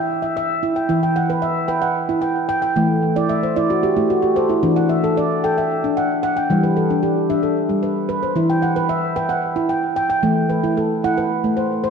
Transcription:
Already playing: E3 G5
0.22 E5
0.37 E5
0.63 E4
0.76 G5
0.89 E3 E4
1.03 G5
1.16 F#5
1.30 B4
1.42 E5
1.68 B4 G5
1.82 F#5
2.09 E4
2.22 G5
2.49 G5
2.62 G5
2.76 E3 A3
3.16 E4 D5
3.29 E5
3.43 C5
3.56 E4 D5
3.70 F#4
3.83 G4
3.97 A3 E4
4.10 F#4
4.22 G4
4.36 A4 C5
4.49 E4
4.63 E3 D4
4.76 F#5
4.89 E5
5.04 A4
5.17 D5
5.44 A4 G5
5.58 E5
5.84 D4
5.97 F#5
6.23 F#5
6.37 G5
6.50 E3 G3
6.63 B4
6.77 A4
6.90 D4
7.03 G4
7.30 D4 E5
7.43 A4
7.69 G3
7.83 B4
8.09 B4
8.23 C5
8.36 E3 E4
8.50 G5
8.62 F#5
8.76 B4
8.89 E5
9.16 B4 G5
9.29 F#5
9.56 E4
9.69 G5
9.96 G5
10.10 G5
10.23 E3 A3
10.50 B4
10.64 E4
10.77 A4
11.04 E4 F#5
11.18 B4
11.44 A3
11.57 C5
11.84 C5

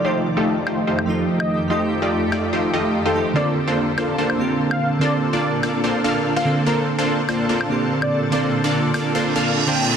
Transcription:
Already playing: F2 D#3 F3 A3 D#4 G4 A4
0.02 F3 A3 D#4 F4 G4 C5
0.37 A3 D#4 F4 G4 A4
0.67 A3 D#4 F4 G4 C5, high woodblock
0.87 A3 D#4 F4 G4 C5
0.99 high woodblock
1.06 F3 A3 D#4 F4
1.40 D#5, high woodblock
1.68 F3 A3 D#4 F4 G4 C5 D#5
2.02 A3 D#4 F4 G4 D5
2.32 A3 D#4 F4 G4 D5, high woodblock
2.53 A3 D#4 F4 G4 C5
2.73 A3 D#4 F4 G4 D#5
3.05 A3 D#4 F4 G4 A4 C5
3.14 F3 A3 D#4 G4
3.33 A#2 D3 A#3 C4 D4 F4 A4 C5 D5
3.37 A4
3.68 A#3 D4 F4 A4 C5
3.98 A#3 D4 F4 A4 C5, high woodblock
4.18 A#3 D4 F4 A4 C5
4.30 high woodblock
4.37 D3 A#3 C4
4.41 G4
4.71 F5, high woodblock
4.99 D3 A#3 C4 D4 F4 A4 C5 D5
5.33 A#3 D4 F4 A4 D5
5.63 A#3 D4 F4 A4 D5, high woodblock
5.84 A#3 D4 F4 A4 C5
6.04 A#3 D4 F4 A4 F5
6.36 A#3 D4 F4 A4 C5 F5
6.45 D3 A#3 C4 A4
6.64 D3 A#3 C4 D4 F4 A4 A#4 C5
6.68 A4
6.99 A#3 D4 F4 A4 C5
7.29 A#3 D4 F4 A4 C5, high woodblock
7.49 A#3 D4 F4 A4 C5
7.61 high woodblock
7.68 D3 A#3 C4 G4
8.02 D5, high woodblock
8.30 D3 A#3 C4 D4 F4 A4 C5 D5
8.64 A#3 D4 F4 A4 D5
8.94 A#3 D4 F4 A4 D5, high woodblock
9.15 A#3 D4 F4 A4 C5, reverse cymbal
9.36 A#3 D4 F4 A4 F5
9.67 D3 A#3 C4 D4 F4 A4 C5 G5
9.76 D3 A#3 C4 A4

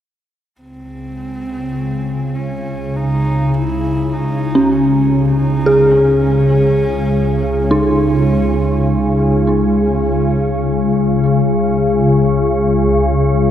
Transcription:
0.56 C#2 C#3
0.61 C4
2.35 C#4
2.97 D#4
3.55 E4
4.13 D#4
4.55 C#4
4.72 C#4
5.30 D#4
5.66 G#4
5.90 C#4
7.66 C#4
7.71 D#4

